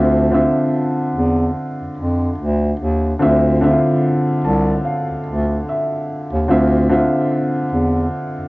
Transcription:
0.00 0.47 D2 medium
0.00 0.24 D3 medium
0.00 0.24 C4 medium
0.00 0.24 F4 medium
0.00 0.25 E5 medium
0.00 0.15 A5 medium
0.31 1.55 D3 medium
0.31 1.55 C4 medium
0.31 1.56 F4 medium
0.31 1.56 E5 medium
1.15 1.50 E2 medium
1.81 1.87 F2 soft
1.97 2.32 F2 medium
2.38 2.73 D2 medium
2.80 3.14 D#2 medium
3.19 3.76 D2 loud
3.19 3.52 D3 medium
3.19 3.53 C4 medium
3.19 3.53 F4 medium
3.19 3.54 E5 medium
3.61 4.84 D3 medium
3.61 4.85 C4 medium
3.61 3.70 E4 medium
3.61 4.85 E5 medium
3.69 4.88 F4 medium
4.44 4.79 C2 medium
4.44 4.82 A5 medium
4.85 5.63 F5 medium
5.10 5.16 D2 soft
5.26 5.61 D2 medium
5.69 6.46 E5 medium
6.33 6.47 D#2 medium
6.48 7.05 D2 loud
6.48 6.81 D3 medium
6.48 6.81 C4 medium
6.48 6.82 F4 medium
6.48 6.82 E5 loud
6.89 8.13 D3 medium
6.89 8.13 C4 medium
6.89 8.14 F4 medium
6.89 8.14 E5 medium
7.72 8.07 E2 medium
8.38 8.44 F2 soft

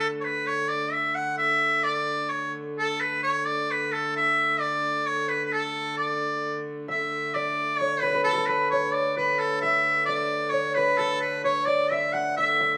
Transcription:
0.00 1.41 D3 medium
0.00 1.42 A3 medium
0.20 0.48 B4 medium
0.20 0.26 C#5 medium
0.47 0.70 C#5 medium
0.69 0.93 D5 medium
0.92 1.16 E5 medium
1.15 1.37 F#5 medium
1.38 6.90 D3 medium
1.38 6.90 A3 medium
1.38 1.84 E5 loud
1.83 2.31 D5 medium
2.30 2.53 C#5 medium
2.78 3.02 A4 medium
3.00 3.23 B4 medium
3.23 3.48 C#5 medium
3.46 3.72 D5 medium
3.71 3.94 B4 medium
3.93 4.15 A4 medium
4.16 4.61 E5 loud
4.59 5.08 D5 medium
5.07 5.30 C#5 medium
5.28 5.45 B4 medium
5.45 5.54 B4 medium
5.53 5.97 A4 medium
5.97 6.62 D5 medium
6.88 12.36 D3 medium
6.88 12.36 A3 medium
6.88 8.61 E5 medium
6.88 7.35 E5 medium
7.34 7.80 D5 medium
7.34 7.87 D5 medium
7.79 8.01 C#5 medium
7.79 8.72 C#5 medium
8.00 8.23 B4 medium
8.00 8.09 B4 medium
8.10 8.14 B4 soft
8.15 8.48 B4 medium
8.24 8.48 A4 medium
8.24 8.32 A4 medium
8.33 8.37 A4 medium
8.37 10.57 A4 medium
8.47 8.70 B4 medium
8.47 9.17 B4 medium
8.70 8.95 C#5 medium
8.70 10.14 C#5 medium
8.94 9.16 D5 medium
9.17 9.41 B4 medium
9.17 10.77 B4 medium
9.39 9.61 A4 medium
9.61 10.04 E5 medium
9.61 11.35 E5 medium
10.06 10.52 D5 medium
10.06 10.59 D5 medium
10.50 10.76 C#5 medium
10.50 11.44 C#5 medium
10.74 10.99 B4 medium
10.74 12.78 B4 medium
10.98 11.20 A4 medium
10.98 12.78 A4 medium
11.20 11.42 B4 medium
11.44 11.73 C#5 medium
11.44 11.67 C#5 medium
11.66 11.92 D5 medium
11.66 12.78 D5 medium
11.91 12.14 E5 medium
11.91 12.38 E5 medium
12.13 12.35 F#5 medium
12.13 12.78 F#5 medium
12.36 12.78 D3 medium
12.36 12.78 A3 medium
12.36 12.77 E5 loud
12.36 12.60 E5 medium
12.60 12.78 E5 medium

